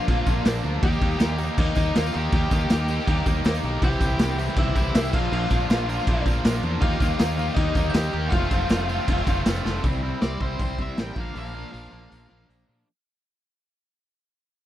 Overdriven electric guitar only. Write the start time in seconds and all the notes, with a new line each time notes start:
0.08 F3 A#3 D4
0.27 F3 A#3 D4
0.45 F3 A#3 D4
0.64 F3 A#3 D4
0.82 A#3 D#4 G4
1.02 A#3 D#4 G4
1.18 A#3 D#4 G4
1.38 A#3 D#4 G4
1.58 A#3 D#4 G4
1.76 A#3 D#4 G4
1.95 A#3 D#4 G4
2.14 A#3 D#4 G4
2.34 A#3 D#4 G4
2.53 A#3 D#4 G4
2.71 A#3 D#4 G4
2.90 A#3 D#4 G4
3.09 A#3 D#4 G4
3.26 A#3 D#4 G4
3.45 A#3 D#4 G4
3.64 A#3 D#4 G4
3.83 E3 C4 E4 G4
4.00 E3 C4 E4 G4
4.20 E3 C4 E4 G4
4.38 E3 C4 E4 G4
4.57 E3 C4 E4 G4
4.76 E3 C4 E4 G4
4.94 E3 C4 E4 G4
5.13 F3 A#3 D4 F4
5.31 F3 A#3 D4 F4
5.50 F3 A#3 D4 F4
5.70 F3 A#3 D4 F4
5.88 F3 A#3 D4 F4
6.08 F3 A#3 D4 F4
6.26 F3 A#3 D4 F4
6.45 F3 A#3 D4 F4
6.64 F3 A#3 D4 F4
6.82 D#3 A#3 D#4 G4
7.00 D#3 A#3 D#4 G4
7.19 D#3 A#3 D#4 G4
7.38 D#3 A#3 D#4 G4
7.57 D#3 A#3 D#4 G4
7.76 D#3 A#3 D#4 G4
7.95 D#3 A#3 D#4 G4
8.13 D#3 A#3 D#4 G4
8.33 A3 C4 F4
8.52 A3 C4 F4
8.71 A3 C4 F4
8.89 A3 C4 F4
9.10 A3 C4 F4
9.29 A3 C4 F4
9.47 A3 C4 F4
9.65 A3 C4 F4
9.84 G3 C4 E4
10.02 G3 C4 E4
10.21 G3 C4 E4
10.41 G3 C4 E4
10.59 G3 C4 E4
10.79 G3 C4 E4
10.98 G3 C4 E4
11.16 F3 A#3 D4
11.35 F3 A#3 D4
11.54 F3 A#3 D4
11.71 F3 A#3 D4
11.91 F3 A#3 D4
12.10 F3 A#3 D4
12.29 F3 A#3 D4
12.48 F3 A#3 D4
12.68 F3 A#3 D4